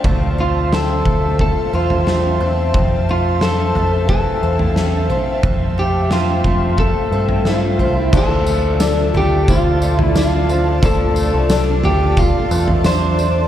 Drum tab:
CC |----------------|----------------|----------------|x---------------|
TB |----------------|----------------|----------------|x-x-x---x-x-x-x-|
SD |----o-------o---|----o-------o---|----o-------o---|----o-------o---|
FT |o-----o-o--o----|o-----o-o--o--o-|o-----o-o--o--o-|o-----o-o--o----|
BD |o-----o-o-------|o-------o-------|o-----o-o-------|o-------o-------|

CC |----------------|
TB |x-x-x---x-x-x-x-|
SD |----o-------o---|
FT |o-----o-o--o----|
BD |o-------o-------|